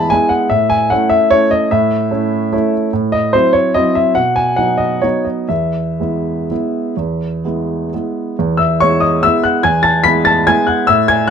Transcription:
0.00 0.13 E2 soft
0.00 0.11 G#3 soft
0.00 0.11 B3 soft
0.00 0.12 E4 soft
0.00 0.14 A5 medium
0.00 0.13 B5 loud
0.10 0.47 G#3 soft
0.10 0.47 B3 soft
0.10 0.48 E4 soft
0.10 0.31 G#5 medium
0.29 0.50 F#5 medium
0.50 0.90 A2 soft
0.50 0.70 E5 medium
0.70 0.90 G#5 medium
0.90 1.28 A3 soft
0.90 1.28 C#4 soft
0.90 1.28 E4 medium
0.90 1.11 F#5 medium
1.09 1.31 E5 medium
1.31 1.68 A3 soft
1.31 1.68 C#4 soft
1.31 1.68 E4 soft
1.31 1.51 C#5 loud
1.51 1.71 D#5 medium
1.71 2.11 A2 medium
1.71 2.73 E5 medium
2.11 2.49 A3 soft
2.11 2.49 C#4 soft
2.11 2.49 E4 soft
2.52 2.90 A3 soft
2.52 2.90 C#4 soft
2.52 2.90 E4 medium
2.93 3.32 A2 medium
3.12 3.33 D#5 medium
3.33 3.72 F#3 soft
3.33 3.72 C4 soft
3.33 3.72 E4 soft
3.33 3.54 C5 medium
3.53 3.75 C#5 medium
3.74 4.13 F#3 soft
3.74 4.13 C4 soft
3.74 4.13 E4 soft
3.74 3.96 D#5 medium
3.95 4.16 E5 medium
4.15 4.57 B2 soft
4.15 4.37 F#5 medium
4.36 4.58 G#5 medium
4.56 5.00 F#3 soft
4.56 5.00 B3 soft
4.56 5.00 D#4 soft
4.56 4.80 F#5 medium
4.78 5.02 D#5 medium
5.02 5.47 F#3 soft
5.02 5.47 B3 soft
5.02 5.47 D#4 soft
5.02 5.26 C#5 medium
5.24 5.50 D#5 soft
5.49 5.98 E2 soft
5.49 7.91 E5 medium
6.00 6.46 G#3 soft
6.00 6.46 B3 soft
6.00 6.46 E4 soft
6.51 6.94 G#3 soft
6.51 6.95 B3 soft
6.51 6.95 E4 soft
6.97 7.43 E2 soft
7.45 7.89 G#3 soft
7.45 7.89 B3 soft
7.45 7.89 E4 soft
7.94 8.35 G#3 soft
7.94 8.36 B3 soft
7.94 8.36 E4 soft
8.39 8.80 E2 medium
8.57 8.79 E5 medium
8.57 8.80 E6 medium
8.80 9.20 G#3 soft
8.80 9.20 B3 soft
8.80 9.21 E4 soft
8.80 9.01 C#5 medium
8.80 9.02 C#6 loud
9.00 9.22 D#5 medium
9.00 9.23 D#6 medium
9.23 9.61 G#3 soft
9.23 9.61 B3 soft
9.23 9.62 E4 medium
9.23 9.44 E5 medium
9.23 9.44 E6 loud
9.44 9.63 F#5 medium
9.44 9.64 F#6 medium
9.63 10.04 E2 soft
9.63 9.83 G#5 medium
9.63 9.84 G#6 medium
9.83 10.03 A5 medium
9.83 10.04 A6 medium
10.04 10.43 G#3 soft
10.04 10.43 B3 soft
10.04 10.43 E4 soft
10.04 10.24 B5 medium
10.04 10.25 B6 loud
10.25 10.46 A5 medium
10.25 10.47 A6 medium
10.47 10.85 G#3 soft
10.47 10.85 B3 medium
10.47 10.85 E4 soft
10.47 10.67 G#5 medium
10.47 10.68 G#6 loud
10.67 10.87 F#5 medium
10.67 10.88 F#6 medium
10.87 11.28 A2 medium
10.87 11.07 E5 medium
10.87 11.08 E6 loud
11.08 11.28 G#5 medium
11.08 11.29 G#6 loud

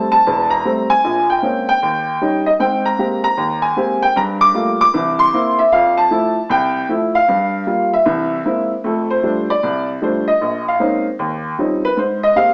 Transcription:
0.00 0.14 G3 medium
0.00 0.14 A3 soft
0.00 0.14 C4 medium
0.12 0.52 A5 loud
0.27 0.60 E1 medium
0.27 0.60 E2 medium
0.50 0.91 A#5 loud
0.65 0.92 G3 soft
0.65 0.92 A3 soft
0.65 0.92 C4 medium
0.90 1.26 G#5 loud
1.04 1.38 A#1 medium
1.04 1.38 A#2 medium
1.30 1.67 G5 medium
1.43 1.69 G#3 soft
1.43 1.69 A#3 soft
1.43 1.69 C4 soft
1.43 1.70 C#4 medium
1.69 2.42 G5 loud
1.82 2.16 D#2 medium
2.21 2.48 G3 medium
2.21 2.48 C#4 soft
2.21 2.48 D#4 medium
2.46 2.51 D#5 medium
2.59 2.94 G#2 medium
2.59 2.94 C4 medium
2.59 2.86 G5 medium
2.86 3.22 A#5 medium
2.99 3.25 G#3 soft
2.99 3.25 A#3 soft
2.99 3.26 C4 soft
2.99 3.26 G4 medium
3.24 3.64 A#5 loud
3.37 3.71 D#2 medium
3.62 4.03 G#5 medium
3.77 4.03 G#3 soft
3.77 4.03 A#3 medium
3.77 4.03 C4 medium
3.77 4.04 G4 medium
4.02 4.15 G5 medium
4.16 4.50 G2 medium
4.16 4.23 A#5 loud
4.41 4.77 D6 loud
4.54 4.81 G3 medium
4.54 4.81 A3 soft
4.54 4.81 A#3 soft
4.54 4.82 F4 medium
4.81 5.17 D6 loud
4.94 5.28 C2 medium
4.94 5.28 E3 medium
5.19 5.59 C6 loud
5.33 5.60 A#3 medium
5.33 5.60 C4 soft
5.33 5.60 E4 medium
5.59 5.73 E5 medium
5.72 6.06 F2 medium
5.72 5.98 F5 medium
5.97 6.47 A5 medium
6.11 6.37 F3 medium
6.11 6.38 A3 soft
6.11 6.38 E4 medium
6.50 6.84 C2 medium
6.50 6.87 G5 medium
6.89 7.16 F3 medium
6.89 7.16 A3 soft
6.89 7.16 E4 medium
7.15 7.95 F5 loud
7.28 7.62 G2 medium
7.67 7.94 G3 medium
7.67 7.94 A#3 soft
7.67 7.94 F4 medium
7.94 8.67 E5 medium
8.06 8.40 C2 medium
8.06 8.40 E3 medium
8.45 8.72 G#3 medium
8.45 8.72 A#3 medium
8.45 8.72 C4 medium
8.45 8.72 E4 medium
8.84 9.18 F2 medium
8.84 9.18 A3 medium
8.84 9.10 A4 medium
9.10 9.46 C5 medium
9.23 9.50 F3 medium
9.23 9.50 G3 soft
9.23 9.50 A3 soft
9.23 9.50 D4 medium
9.50 9.86 D5 medium
9.63 9.97 C2 medium
10.02 10.28 F3 medium
10.02 10.28 G3 soft
10.02 10.28 A3 soft
10.02 10.29 D4 medium
10.02 10.27 C5 medium
10.28 10.64 D#5 medium
10.41 10.75 A#1 medium
10.68 11.04 F5 medium
10.80 11.06 G#3 medium
10.80 11.07 A#3 soft
10.80 11.06 C4 soft
10.80 11.06 C#4 soft
10.80 11.07 D#4 medium
11.19 11.53 D#2 medium
11.59 11.85 F3 medium
11.59 11.85 G3 soft
11.59 11.85 C4 soft
11.59 11.85 C#4 soft
11.59 11.85 D#4 medium
11.85 11.98 B4 medium
11.97 12.31 G#2 medium
11.97 12.22 C5 medium
12.23 12.36 D#5 medium
12.36 12.54 G#3 medium
12.36 12.54 A#3 soft
12.36 12.54 C4 soft
12.36 12.54 G4 medium
12.36 12.54 F5 medium

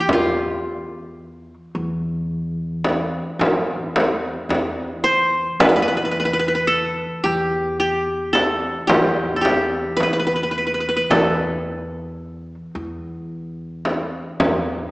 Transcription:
0.00 0.19 E4 medium
0.00 1.26 G4 medium
0.09 1.53 E2 medium
0.09 3.37 F4 medium
0.09 frame drum medium
1.75 3.19 E2 medium
2.84 frame drum medium
3.39 4.35 E2 medium
3.39 frame drum medium
3.96 frame drum medium
4.49 5.45 E2 medium
4.49 frame drum medium
5.04 5.66 C5 medium
5.60 7.04 E2 medium
5.60 5.69 B4 medium
5.60 frame drum medium
5.69 5.75 B4 medium
5.76 5.82 B4 medium
5.82 5.87 B4 medium
5.88 5.96 B4 medium
5.97 6.05 B4 medium
6.05 6.11 B4 medium
6.11 6.19 B4 soft
6.20 6.25 B4 medium
6.25 6.33 B4 medium
6.33 6.39 B4 medium
6.39 6.48 B4 medium
6.48 6.54 B4 medium
6.55 7.64 B4 medium
6.67 7.84 A4 medium
7.24 8.69 E2 medium
7.24 7.79 G4 medium
7.80 8.87 G4 medium
8.33 9.36 A4 medium
8.33 frame drum medium
8.87 9.86 E2 medium
8.87 9.41 G4 medium
8.87 frame drum medium
9.36 10.53 A4 soft
9.41 10.67 G4 medium
9.41 frame drum medium
9.97 10.96 E2 medium
9.97 10.02 B4 medium
9.97 frame drum medium
10.03 10.13 B4 medium
10.13 10.19 B4 medium
10.19 10.26 B4 soft
10.27 10.35 B4 medium
10.36 10.43 B4 soft
10.43 10.51 B4 soft
10.51 10.57 B4 soft
10.58 10.66 B4 soft
10.67 10.74 B4 soft
10.74 10.80 B4 soft
10.80 10.88 B4 soft
10.89 10.96 B4 medium
10.97 12.06 B4 medium
11.10 12.54 E2 medium
11.10 14.37 A4 medium
11.10 frame drum medium
12.75 14.19 E2 medium
13.85 frame drum medium
14.40 14.91 E2 medium
14.40 frame drum medium

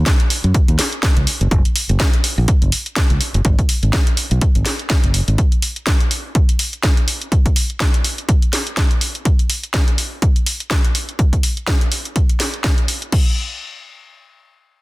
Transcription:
0.06 kick loud
0.06 snare loud
0.06 closed hi-hat medium
0.20 closed hi-hat medium
0.30 open hi-hat medium
0.44 0.51 F#2 medium
0.44 closed hi-hat soft
0.54 kick loud
0.54 closed hi-hat medium
0.68 0.76 D#2 medium
0.68 closed hi-hat soft
0.79 snare medium
0.79 open hi-hat loud
0.93 closed hi-hat soft
1.03 kick loud
1.03 snare loud
1.03 closed hi-hat medium
1.17 1.24 C#2 medium
1.17 closed hi-hat medium
1.27 open hi-hat loud
1.41 1.48 F#1 medium
1.41 closed hi-hat soft
1.51 1.61 F#1 medium
1.51 kick loud
1.51 closed hi-hat medium
1.65 closed hi-hat soft
1.76 open hi-hat loud
1.89 1.97 F#1 medium
1.89 closed hi-hat soft
2.00 kick loud
2.00 snare loud
2.00 closed hi-hat medium
2.14 closed hi-hat medium
2.24 open hi-hat medium
2.38 2.45 A#1 medium
2.48 kick loud
2.48 closed hi-hat medium
2.62 2.69 F#1 medium
2.62 closed hi-hat soft
2.72 open hi-hat loud
2.86 closed hi-hat soft
2.96 kick loud
2.96 snare loud
2.96 closed hi-hat medium
3.10 3.18 C#2 medium
3.10 closed hi-hat medium
3.21 open hi-hat medium
3.34 3.42 F#1 medium
3.34 closed hi-hat soft
3.45 3.55 G#1 medium
3.45 kick loud
3.45 closed hi-hat medium
3.59 kick medium
3.59 closed hi-hat soft
3.69 open hi-hat loud
3.83 3.90 G#1 medium
3.83 closed hi-hat soft
3.93 kick loud
3.93 snare loud
3.93 closed hi-hat medium
4.07 closed hi-hat medium
4.17 open hi-hat medium
4.31 4.39 B1 medium
4.31 closed hi-hat soft
4.41 kick loud
4.41 closed hi-hat medium
4.55 4.63 G#1 medium
4.55 closed hi-hat soft
4.66 snare medium
4.66 open hi-hat loud
4.79 closed hi-hat soft
4.90 kick loud
4.90 snare loud
4.90 closed hi-hat medium
5.04 5.20 F#1 medium
5.04 closed hi-hat medium
5.14 open hi-hat medium
5.28 5.35 G#1 medium
5.28 closed hi-hat soft
5.38 kick loud
5.38 closed hi-hat medium
5.52 closed hi-hat soft
5.62 open hi-hat loud
5.76 closed hi-hat soft
5.87 kick loud
5.87 snare loud
5.87 closed hi-hat medium
6.00 closed hi-hat medium
6.11 open hi-hat medium
6.35 kick loud
6.35 closed hi-hat medium
6.49 closed hi-hat soft
6.59 open hi-hat loud
6.73 closed hi-hat soft
6.83 kick loud
6.83 snare loud
6.83 closed hi-hat medium
6.97 closed hi-hat soft
7.08 open hi-hat medium
7.21 closed hi-hat soft
7.32 kick loud
7.32 closed hi-hat medium
7.46 kick medium
7.46 closed hi-hat soft
7.56 open hi-hat medium
7.70 closed hi-hat soft
7.80 kick loud
7.80 snare loud
7.80 closed hi-hat medium
7.94 closed hi-hat medium
8.04 open hi-hat medium
8.18 closed hi-hat soft
8.29 kick loud
8.29 closed hi-hat medium
8.42 closed hi-hat soft
8.53 snare medium
8.53 open hi-hat loud
8.67 closed hi-hat soft
8.77 kick loud
8.77 snare loud
8.77 closed hi-hat medium
8.91 closed hi-hat soft
9.01 open hi-hat medium
9.15 closed hi-hat soft
9.25 kick loud
9.25 closed hi-hat medium
9.39 closed hi-hat medium
9.50 open hi-hat medium
9.63 closed hi-hat soft
9.74 kick loud
9.74 snare loud
9.74 closed hi-hat medium
9.88 closed hi-hat medium
9.98 open hi-hat medium
10.22 kick loud
10.22 closed hi-hat medium
10.36 closed hi-hat soft
10.46 open hi-hat loud
10.60 closed hi-hat soft
10.71 kick loud
10.71 snare loud
10.71 closed hi-hat medium
10.85 closed hi-hat medium
10.95 open hi-hat medium
11.09 closed hi-hat soft
11.19 kick loud
11.19 closed hi-hat medium
11.33 kick medium
11.33 closed hi-hat medium
11.43 open hi-hat medium
11.57 closed hi-hat soft
11.67 kick loud
11.67 snare loud
11.67 closed hi-hat medium
11.81 closed hi-hat medium
11.92 open hi-hat medium
12.05 closed hi-hat soft
12.16 kick loud
12.16 closed hi-hat medium
12.29 closed hi-hat medium
12.40 snare medium
12.40 open hi-hat loud
12.54 closed hi-hat soft
12.64 kick loud
12.64 snare loud
12.64 closed hi-hat medium
12.78 closed hi-hat medium
12.88 open hi-hat medium
13.02 closed hi-hat soft
13.12 kick loud
13.12 crash medium

